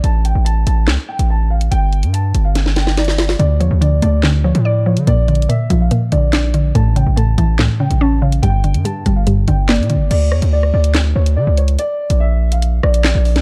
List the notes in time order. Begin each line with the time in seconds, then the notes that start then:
0.04 A1 A5, closed hi-hat
0.25 G5, closed hi-hat
0.35 A1
0.45 A5, closed hi-hat
0.67 A1 A5, closed hi-hat
0.88 C#2, snare, clap
1.09 G5
1.19 A1, closed hi-hat
1.30 A5
1.50 F5
1.61 closed hi-hat
1.71 G1 G5, closed hi-hat
1.93 closed hi-hat
2.03 G2, closed hi-hat
2.13 A5, closed hi-hat
2.35 G1, closed hi-hat
2.45 F5
2.55 snare, closed hi-hat
2.66 snare
2.76 G5, snare, closed hi-hat
2.87 snare
2.97 D5, snare, closed hi-hat
3.04 snare, closed hi-hat
3.12 closed hi-hat
3.18 snare, closed hi-hat
3.29 snare
3.39 D2 D3 D5, closed hi-hat
3.60 E2 F3 C#5, closed hi-hat
3.71 D2
3.81 D3 D5, closed hi-hat
4.02 D2 A3 D5, closed hi-hat
4.23 D3, snare, clap
4.44 F3 C#5
4.55 A2, closed hi-hat
4.65 D5
4.86 F3 C#5
4.97 D3, closed hi-hat
5.07 A#1 A#2 D5, closed hi-hat
5.28 D3, closed hi-hat
5.35 closed hi-hat
5.42 closed hi-hat
5.49 A#2 E5, closed hi-hat
5.70 A#1 F3, closed hi-hat
5.81 F5
5.91 A#2, closed hi-hat
6.12 A#1 D3 D5, closed hi-hat
6.33 D4, snare, clap, closed hi-hat
6.54 D3, closed hi-hat
6.75 A1 A2 A5, closed hi-hat
6.96 C#3 G5, closed hi-hat
7.07 A1
7.16 A2 A5, closed hi-hat
7.38 A1 E3 A5, closed hi-hat
7.59 C#2 A2, snare, clap
7.80 C#3 G5
7.90 A1, closed hi-hat
8.01 C#4 A5
8.22 C#3 F5
8.32 closed hi-hat
8.43 G1 G2 G5, closed hi-hat
8.64 D3, closed hi-hat
8.74 G2, closed hi-hat
8.85 G2 A5, closed hi-hat
9.06 G1 G3, closed hi-hat
9.16 F5
9.27 G2, closed hi-hat
9.48 G1 D3 G5, closed hi-hat
9.69 A#3 D5, snare, clap, closed hi-hat
9.76 A#2, closed hi-hat
9.83 closed hi-hat
9.90 D3, closed hi-hat
9.95 G1
10.10 D2 D5, closed hi-hat, crash
10.31 E2 C#5, cross-stick
10.42 D2, closed hi-hat
10.53 D5
10.63 cross-stick
10.74 D2 D5
10.84 closed hi-hat
10.94 snare, clap, closed hi-hat
11.15 D2 C#5
11.26 closed hi-hat
11.36 D3 D5
11.47 C#2
11.57 C#5, closed hi-hat
11.68 closed hi-hat
11.79 D5, closed hi-hat
12.10 A#1, closed hi-hat
12.20 E5
12.52 F5, closed hi-hat
12.62 closed hi-hat
12.83 A#1 D5, cross-stick
12.94 closed hi-hat
13.04 snare, clap
13.15 A#1
13.25 open hi-hat
13.36 C#2, snare, closed hi-hat